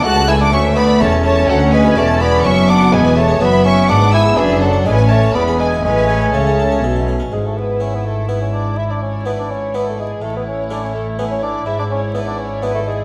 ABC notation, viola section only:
X:1
M:3/4
L:1/8
Q:1/4=124
K:Emix
V:1 name="Viola section"
A,2 A,2 C2- | C4 B,2- | B,2 B,4 | D2 C2 B,2 |
C4- C z | E6- | E6 | E6- |
E6 |]